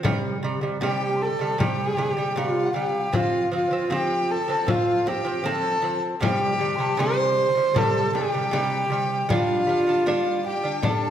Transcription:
0.03 0.35 C3 loud
0.03 0.36 G3 loud
0.03 frame drum medium
0.43 0.59 C3 medium
0.43 0.59 G3 medium
0.61 0.77 C3 medium
0.61 0.78 G3 medium
0.61 frame drum soft
0.81 1.28 C3 medium
0.81 1.29 G3 loud
0.81 1.24 G4 medium
0.81 1.17 G5 medium
0.81 frame drum medium
1.16 1.24 C6 medium
1.21 1.61 A4 medium
1.21 1.60 A5 medium
1.21 frame drum soft
1.39 1.55 C3 medium
1.39 1.56 G3 medium
1.58 1.90 C3 medium
1.58 1.91 G3 loud
1.58 2.39 G4 medium
1.58 2.14 G5 medium
1.58 frame drum medium
1.97 2.13 C3 medium
1.97 2.14 G3 medium
1.97 frame drum soft
2.17 2.32 C3 medium
2.17 2.33 G3 medium
2.17 2.39 G5 medium
2.17 frame drum soft
2.36 2.67 C3 medium
2.36 2.68 G3 medium
2.36 2.75 F4 medium
2.36 3.14 F5 medium
2.36 frame drum medium
2.74 3.06 C3 medium
2.74 3.07 G3 medium
2.74 3.17 G4 medium
3.13 3.44 F3 medium
3.13 3.45 C4 loud
3.13 3.53 F4 medium
3.13 3.50 F5 medium
3.13 frame drum medium
3.52 3.67 F3 medium
3.52 3.68 C4 medium
3.52 3.92 F5 medium
3.56 3.95 F4 medium
3.71 3.87 F3 medium
3.71 3.88 C4 medium
3.71 frame drum soft
3.90 4.37 F3 medium
3.90 4.38 C4 loud
3.90 4.33 G4 medium
3.90 4.32 G5 medium
3.90 frame drum medium
4.30 4.70 A4 medium
4.30 4.70 A5 medium
4.30 frame drum soft
4.48 4.64 F3 medium
4.48 4.65 C4 medium
4.67 4.98 F3 medium
4.67 4.99 C4 medium
4.67 5.10 F4 medium
4.67 5.09 F5 medium
4.67 frame drum medium
5.06 5.22 F3 medium
5.06 5.23 C4 medium
5.06 5.47 G4 medium
5.06 5.48 G5 medium
5.06 frame drum medium
5.25 5.41 F3 medium
5.25 5.42 C4 medium
5.25 frame drum soft
5.44 5.75 F3 medium
5.44 5.76 C4 loud
5.44 6.03 A4 medium
5.44 6.03 A5 medium
5.44 frame drum medium
5.82 6.14 F3 medium
5.82 6.15 C4 medium
6.21 6.52 C3 loud
6.21 6.53 G3 loud
6.21 7.01 G4 loud
6.21 6.77 G5 medium
6.21 frame drum medium
6.59 6.75 C3 medium
6.59 6.76 G3 medium
6.76 6.95 C3 medium
6.76 6.82 C6 medium
6.80 6.95 G3 medium
6.80 7.00 A5 medium
6.80 frame drum soft
6.97 7.44 C3 loud
6.97 7.45 G3 loud
6.97 7.79 C5 loud
6.97 7.48 C6 medium
6.97 frame drum medium
7.37 frame drum soft
7.55 7.71 C3 medium
7.55 7.72 G3 medium
7.74 8.06 C3 medium
7.74 8.07 G3 loud
7.74 8.17 A4 loud
7.74 8.11 A5 medium
7.74 frame drum medium
8.13 8.29 C3 medium
8.13 8.30 G3 medium
8.13 9.30 G4 loud
8.13 8.87 G5 medium
8.13 frame drum medium
8.32 8.48 C3 medium
8.32 8.49 G3 medium
8.32 frame drum soft
8.51 8.83 C3 medium
8.51 8.84 G3 loud
8.51 frame drum medium
8.90 9.22 C3 medium
8.90 9.22 G3 medium
8.90 9.32 G5 medium
9.29 9.60 G3 loud
9.29 9.61 D4 loud
9.29 10.42 F4 medium
9.29 10.07 F5 medium
9.29 frame drum medium
9.67 9.83 G3 medium
9.67 9.84 D4 medium
9.87 10.03 G3 medium
9.87 10.04 D4 medium
9.87 frame drum soft
10.06 10.53 G3 medium
10.06 10.54 D4 loud
10.06 10.47 F5 medium
10.06 frame drum medium
10.46 10.82 G4 medium
10.46 10.86 G5 medium
10.46 frame drum soft
10.64 10.79 G3 medium
10.64 10.80 D4 medium
10.82 11.10 G3 medium
10.82 11.10 D4 medium
10.82 11.10 A5 medium
10.82 frame drum medium
10.87 11.10 A4 medium

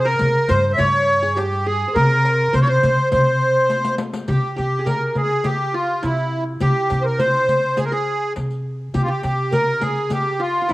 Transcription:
0.00 0.15 C3 loud
0.00 0.82 G#4 medium
0.04 0.50 A#4 medium
0.04 1.19 A#4 medium
0.19 0.34 C3 medium
0.19 riq medium
0.19 darbuka dum medium
0.48 0.76 G2 medium
0.48 0.72 C5 medium
0.48 0.85 C5 medium
0.48 riq medium
0.48 darbuka dum medium
0.73 0.79 E5 medium
0.78 1.83 G2 medium
0.78 1.38 C#5 loud
0.78 1.80 C#5 medium
0.78 riq medium
0.78 darbuka dum medium
1.08 riq soft
1.22 1.42 G#4 medium
1.35 1.66 G4 medium
1.35 1.72 G4 medium
1.35 riq medium
1.35 darbuka tek medium
1.52 riq soft
1.66 1.96 G#4 medium
1.66 2.88 G#4 medium
1.88 2.53 C5 medium
1.94 2.47 C3 loud
1.94 2.55 A#4 loud
1.94 3.09 A#4 medium
1.94 riq medium
1.94 darbuka dum medium
2.10 riq soft
2.25 riq soft
2.25 darbuka tek medium
2.53 2.80 C3 medium
2.53 2.67 C5 medium
2.53 2.60 C5 medium
2.53 riq medium
2.53 darbuka dum medium
2.62 2.68 C#5 medium
2.67 3.11 C5 medium
2.67 3.09 C5 medium
2.83 2.96 C3 medium
2.83 riq medium
2.83 darbuka dum medium
2.98 darbuka ka soft
3.12 4.17 C3 medium
3.12 4.17 C5 medium
3.12 3.95 C5 medium
3.12 riq medium
3.12 darbuka dum medium
3.41 riq soft
3.70 riq medium
3.70 darbuka tek medium
3.84 riq medium
3.84 darbuka ka medium
3.98 riq medium
3.98 darbuka tek medium
4.13 riq medium
4.13 darbuka ka medium
4.28 4.42 C3 medium
4.28 4.56 G4 medium
4.28 riq medium
4.28 darbuka dum loud
4.56 5.62 C3 medium
4.56 4.85 G4 medium
4.56 4.88 G4 medium
4.56 riq soft
4.56 darbuka tek medium
4.79 5.50 G#4 medium
4.86 5.99 A#4 medium
4.86 5.17 A#4 medium
4.86 riq medium
4.86 darbuka dum medium
5.15 5.46 G#4 medium
5.15 riq medium
5.15 darbuka dum loud
5.30 riq soft
5.30 darbuka ka soft
5.44 6.61 G4 medium
5.44 5.75 G4 medium
5.44 riq medium
5.44 darbuka dum medium
5.74 6.04 F4 medium
5.74 6.09 F4 medium
5.74 darbuka ka soft
6.03 6.55 C3 medium
6.03 7.43 E4 medium
6.03 6.44 E4 medium
6.03 riq soft
6.03 darbuka tek medium
6.17 riq soft
6.47 darbuka ka soft
6.60 6.75 C3 medium
6.60 7.83 G4 medium
6.60 7.03 G4 medium
6.60 riq medium
6.60 darbuka dum medium
6.90 7.95 C3 medium
6.90 riq soft
6.90 darbuka tek medium
7.01 7.20 A#4 medium
7.01 7.05 C5 medium
7.19 7.80 C5 medium
7.19 8.25 C5 medium
7.19 riq medium
7.19 darbuka dum medium
7.48 riq medium
7.48 darbuka dum medium
7.63 riq soft
7.77 7.92 G#4 medium
7.77 7.84 G#4 medium
7.77 riq medium
7.77 darbuka dum medium
7.85 7.92 A#4 medium
7.91 8.33 G#4 medium
7.91 9.00 G#4 medium
8.08 darbuka ka soft
8.36 8.89 C3 medium
8.36 riq soft
8.36 darbuka tek medium
8.50 riq soft
8.50 darbuka ka soft
8.80 darbuka ka soft
8.94 9.08 C3 medium
8.94 9.08 G4 medium
8.94 9.02 G4 medium
8.94 riq medium
8.94 darbuka dum medium
9.03 9.09 F4 medium
9.08 9.87 G4 medium
9.08 9.22 G4 medium
9.08 darbuka ka soft
9.23 10.28 C3 medium
9.23 9.53 G4 medium
9.23 riq soft
9.23 darbuka tek medium
9.52 9.83 A#4 medium
9.52 10.66 A#4 medium
9.52 riq medium
9.52 darbuka dum medium
9.81 10.12 G#4 medium
9.81 10.17 G#4 medium
9.81 riq medium
9.81 darbuka dum medium
9.96 riq soft
9.96 darbuka ka soft
10.10 10.73 G4 medium
10.10 10.41 G4 medium
10.10 riq medium
10.10 darbuka dum medium
10.40 10.61 F4 medium
10.40 10.70 F4 medium
10.40 darbuka ka soft
10.62 10.73 F4 medium
10.69 10.73 E4 medium
10.69 riq soft
10.69 darbuka tek medium

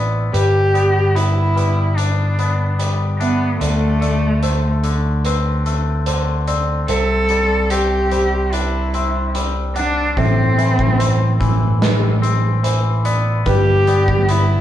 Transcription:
0.00 0.29 A1 medium
0.00 0.33 E3 medium
0.00 0.33 B3 medium
0.00 0.33 C4 medium
0.00 0.34 D5 medium
0.33 3.57 G1 medium
0.33 1.55 G3 medium
0.33 1.17 G4 medium
0.33 0.74 B4 medium
0.33 closed hi-hat medium
0.74 1.14 B3 medium
0.74 1.56 D5 medium
0.74 closed hi-hat soft
1.15 2.38 B3 medium
1.15 1.98 E4 medium
1.15 closed hi-hat medium
1.56 2.78 G3 medium
1.56 2.38 B4 medium
1.56 closed hi-hat soft
1.96 2.78 D4 medium
1.96 3.20 D4 medium
1.96 closed hi-hat medium
2.39 3.61 B3 medium
2.39 3.20 D5 medium
2.39 closed hi-hat soft
2.79 3.60 G3 medium
2.79 closed hi-hat medium
3.19 3.58 B3 medium
3.19 5.25 D4 medium
3.19 3.61 E5 medium
3.19 closed hi-hat soft
3.60 6.85 D2 medium
3.60 4.83 D3 medium
3.60 4.79 A3 medium
3.60 4.01 D5 medium
3.60 closed hi-hat medium
4.01 4.42 A3 medium
4.01 4.43 D5 medium
4.01 closed hi-hat soft
4.43 5.65 A3 medium
4.43 5.25 C5 medium
4.43 closed hi-hat medium
4.84 6.06 D3 medium
4.84 closed hi-hat medium
5.25 6.47 C4 medium
5.25 6.07 B4 medium
5.25 closed hi-hat medium
5.66 6.89 A3 soft
5.66 closed hi-hat soft
6.06 6.89 D3 medium
6.06 6.48 C5 medium
6.06 closed hi-hat medium
6.48 7.71 C4 medium
6.48 6.89 D5 medium
6.48 closed hi-hat medium
6.88 10.13 C2 medium
6.88 8.94 C3 medium
6.88 7.72 A4 medium
6.88 7.30 C5 medium
6.88 closed hi-hat medium
7.29 8.11 G3 medium
7.29 8.12 D5 medium
7.29 closed hi-hat soft
7.70 8.93 C4 medium
7.70 8.54 G4 medium
7.70 closed hi-hat medium
8.11 9.34 G3 medium
8.11 8.94 C5 medium
8.11 closed hi-hat soft
8.53 9.74 D4 medium
8.53 9.35 E4 medium
8.53 closed hi-hat medium
8.94 10.17 C4 medium
8.94 9.76 E5 medium
8.94 closed hi-hat soft
9.35 10.17 G3 medium
9.35 closed hi-hat medium
9.76 10.17 D4 medium
9.76 10.19 D4 medium
9.76 10.17 F#5 medium
9.76 closed hi-hat soft
10.17 13.42 A1 medium
10.17 12.23 A2 medium
10.17 11.41 C4 medium
10.17 10.57 E5 medium
10.17 kick medium
10.17 closed hi-hat medium
10.58 11.39 E3 medium
10.58 10.99 E5 medium
10.58 closed hi-hat soft
10.79 kick medium
10.98 12.21 C4 medium
10.98 11.82 C5 medium
10.98 closed hi-hat medium
11.40 12.62 E3 medium
11.40 kick medium
11.40 closed hi-hat soft
11.81 12.64 B4 medium
11.81 snare medium
11.81 closed hi-hat medium
12.22 13.46 C4 medium
12.22 closed hi-hat medium
12.63 13.46 E3 medium
12.63 13.05 C5 medium
12.63 closed hi-hat medium
13.05 13.46 B3 medium
13.05 13.46 D5 medium
13.05 closed hi-hat medium
13.46 14.61 G1 medium
13.46 14.61 G3 medium
13.46 14.32 G4 loud
13.46 13.88 B4 medium
13.46 kick medium
13.46 closed hi-hat medium
13.87 14.27 B3 medium
13.87 14.61 D5 medium
13.87 closed hi-hat soft
14.08 kick medium
14.28 14.61 B3 medium
14.28 14.61 E4 medium
14.28 closed hi-hat medium

